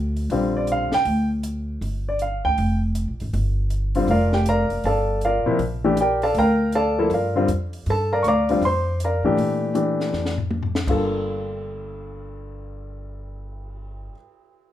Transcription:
0.00 0.27 D2 medium
0.17 open hi-hat soft
0.30 0.88 A#1 medium
0.30 0.88 D3 medium
0.30 0.88 G3 medium
0.30 0.89 C4 medium
0.30 0.89 F4 medium
0.30 open hi-hat soft
0.57 0.68 D5 medium
0.67 closed hi-hat soft
0.72 0.94 F5 medium
0.92 1.29 G5 loud
0.92 muted upright bass stroke soft
0.92 snare medium
1.05 1.77 D2 medium
1.05 open hi-hat soft
1.43 closed hi-hat medium
1.81 2.40 G1 medium
1.81 open hi-hat soft
2.09 2.20 D5 medium
2.19 2.44 F5 medium
2.19 closed hi-hat soft
2.44 2.56 D2 medium
2.44 2.79 G5 medium
2.58 3.04 F1 medium
2.58 open hi-hat soft
2.95 closed hi-hat medium
3.08 3.19 A#1 medium
3.20 3.32 G#1 medium
3.20 open hi-hat soft
3.33 4.05 G1 medium
3.33 open hi-hat soft
3.70 closed hi-hat soft
3.95 4.07 D3 medium
3.95 4.07 G3 medium
3.95 4.07 C4 medium
3.95 4.07 F4 medium
3.95 open hi-hat soft
4.07 4.66 F1 medium
4.07 4.33 F4 medium
4.07 4.33 A#4 medium
4.07 4.34 D5 medium
4.07 4.33 F5 medium
4.07 open hi-hat soft
4.32 4.46 G4 medium
4.32 4.46 G5 medium
4.32 snare soft
4.46 4.83 A#4 medium
4.46 4.83 D5 medium
4.46 4.83 F5 medium
4.46 4.82 A#5 medium
4.46 closed hi-hat medium
4.70 4.83 F#1 medium
4.70 open hi-hat soft
4.84 5.42 G1 medium
4.84 5.20 A4 medium
4.84 5.20 D5 medium
4.84 5.20 F5 medium
4.84 5.20 A5 medium
4.84 open hi-hat soft
5.21 5.58 F4 medium
5.21 5.59 A#4 medium
5.21 5.59 D5 medium
5.21 5.58 F5 medium
5.21 closed hi-hat soft
5.46 5.58 C3 medium
5.46 5.58 F3 medium
5.46 5.58 A#3 medium
5.46 5.58 E4 medium
5.46 muted upright bass stroke soft
5.59 6.31 A#1 medium
5.59 open hi-hat soft
5.84 5.96 E3 medium
5.84 5.96 A3 medium
5.84 5.96 D4 medium
5.84 5.96 G4 medium
5.97 6.23 G4 medium
5.97 6.23 G5 medium
5.97 closed hi-hat medium
6.01 6.23 A#4 medium
6.01 6.22 D5 medium
6.22 6.35 A4 medium
6.22 6.35 D5 medium
6.22 6.35 F5 medium
6.22 6.35 A5 medium
6.22 open hi-hat soft
6.35 7.06 D2 medium
6.35 6.72 A#5 medium
6.35 open hi-hat soft
6.39 6.72 A#4 medium
6.39 6.72 F5 medium
6.39 6.72 G5 medium
6.72 6.98 A4 medium
6.72 7.09 D5 medium
6.72 7.09 F5 medium
6.72 7.09 A5 medium
6.72 closed hi-hat soft
6.99 7.10 F3 medium
6.99 7.10 A#3 medium
6.99 7.10 E4 medium
6.99 7.10 A4 medium
7.10 7.45 G2 medium
7.10 7.47 D5 soft
7.10 open hi-hat soft
7.14 7.35 F4 soft
7.14 7.47 A#4 soft
7.14 7.47 F5 medium
7.36 7.47 D3 medium
7.36 7.47 G3 medium
7.36 7.48 C4 medium
7.36 7.48 F4 medium
7.48 7.83 F2 medium
7.48 closed hi-hat medium
7.73 open hi-hat soft
7.86 8.21 G2 medium
7.86 8.12 A4 medium
7.86 open hi-hat soft
7.90 8.12 A5 medium
8.13 8.24 A#4 medium
8.13 8.25 D5 medium
8.13 8.24 F5 medium
8.13 8.24 A#5 medium
8.23 8.59 D2 medium
8.23 8.25 C#6 medium
8.23 closed hi-hat soft
8.28 8.61 D5 medium
8.28 8.61 F5 medium
8.28 8.61 A#5 medium
8.28 8.61 D6 medium
8.49 8.61 D3 medium
8.49 8.61 G3 medium
8.49 8.61 C4 medium
8.49 8.62 F4 medium
8.49 open hi-hat soft
8.62 9.20 F2 medium
8.62 8.99 C6 medium
8.62 open hi-hat soft
8.66 8.99 C5 medium
9.00 closed hi-hat medium
9.04 9.38 A#4 medium
9.04 9.37 D5 medium
9.04 9.38 F5 soft
9.04 9.37 A#5 medium
9.23 9.36 G#2 medium
9.23 9.73 E3 medium
9.23 9.73 A3 medium
9.23 9.73 D4 medium
9.23 9.73 G4 medium
9.37 10.09 A#2 medium
9.37 open hi-hat soft
9.75 10.32 E3 medium
9.75 10.32 A3 soft
9.75 10.33 D4 soft
9.75 10.33 G4 medium
9.75 closed hi-hat soft
10.00 snare soft
10.12 10.84 F2 medium
10.12 snare soft
10.25 snare medium
10.38 floor tom medium
10.51 high tom medium
10.63 floor tom medium
10.75 snare medium
10.87 14.08 G1 medium
10.87 14.12 G2 medium
10.87 14.13 D3 medium
10.87 14.14 A#3 soft
10.87 14.14 F4 medium
10.87 14.16 A4 medium
10.87 kick soft
10.87 crash medium
11.12 cymbal swell soft

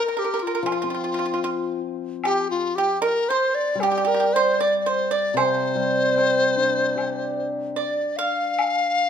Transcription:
0.00 0.20 A#4 medium
0.08 0.16 A#4 soft
0.17 0.44 G4 medium
0.17 0.23 A#4 soft
0.24 0.31 A#4 soft
0.34 0.38 A#4 soft
0.39 0.67 F4 medium
0.39 0.46 A#4 soft
0.47 0.54 A#4 medium
0.55 0.61 A#4 medium
0.63 2.99 F3 medium
0.63 0.71 F4 medium
0.63 high woodblock soft
0.69 1.81 F4 medium
0.69 0.79 F4 soft
0.82 2.41 C4 soft
0.82 0.88 F4 soft
0.90 0.93 F4 soft
0.94 1.02 F4 soft
1.04 1.10 F4 soft
1.14 1.18 F4 soft
1.19 1.24 F4 soft
1.26 1.32 F4 soft
1.34 1.40 F4 soft
1.44 1.80 F4 medium
2.24 2.72 G4 medium
2.24 2.48 G4 medium
2.24 high woodblock medium
2.50 2.77 F4 medium
2.75 3.01 G4 medium
3.02 3.26 A#4 medium
3.02 3.30 A#4 medium
3.02 low woodblock soft
3.29 3.56 C5 medium
3.29 3.78 C5 medium
3.55 3.82 D5 medium
3.75 5.74 G3 medium
3.80 4.09 G4 medium
3.80 3.88 G4 medium
3.80 high woodblock soft
3.92 3.96 G4 soft
3.98 4.03 G4 medium
4.05 4.10 G4 medium
4.05 4.35 A#4 medium
4.14 4.19 G4 medium
4.20 4.25 G4 soft
4.33 4.62 C5 medium
4.33 4.59 C5 medium
4.60 4.79 D5 medium
4.60 4.84 D5 medium
4.80 4.90 D5 medium
4.86 5.10 C5 medium
4.86 5.14 C5 medium
5.11 5.36 D5 medium
5.11 5.38 D5 medium
5.34 7.77 C3 medium
5.34 7.74 C5 medium
5.34 high woodblock medium
5.39 7.49 C5 loud
5.75 7.37 G3 soft
6.16 7.78 C4 soft
6.16 low woodblock soft
6.56 8.18 D4 soft
6.96 8.58 G4 soft
6.96 high woodblock soft
7.76 8.15 D5 medium
7.76 8.18 D5 medium
8.17 9.10 F5 medium
8.59 high woodblock medium

